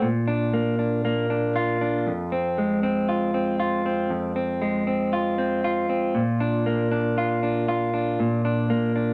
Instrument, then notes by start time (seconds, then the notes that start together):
clean electric guitar
0.02 A#2
0.28 D4
0.54 A#3
0.79 D4
1.05 A#3
1.30 D4
1.56 F4
1.81 D4
2.07 F2
2.32 C4
2.58 G#3
2.83 C4
3.09 F4
3.34 C4
3.60 F4
3.86 C4
4.10 F2
4.36 C4
4.62 G#3
4.87 C4
5.13 F4
5.38 C4
5.64 F4
5.89 C4
6.15 A#2
6.40 D4
6.66 A#3
6.91 D4
7.18 F4
7.43 D4
7.68 F4
7.94 D4
8.20 A#2
8.45 D4
8.70 A#3
8.96 D4